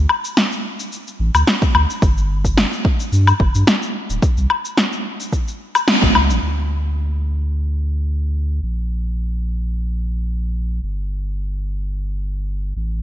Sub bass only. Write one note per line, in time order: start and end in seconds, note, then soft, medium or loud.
1.19 1.30 A1 loud
1.34 1.44 D2 medium
1.74 1.85 D2 loud
2.02 2.66 G1 loud
3.12 3.33 G2 medium
3.40 3.51 G1 loud
3.55 3.64 G2 medium
4.10 4.19 D1 medium
4.37 4.47 C2 loud
6.02 6.12 A1 loud
6.15 6.31 C#2 medium
6.30 6.39 A1 medium
6.42 8.60 D2 medium
8.62 10.80 A#1 medium
10.83 12.73 G1 medium
12.76 13.03 A1 medium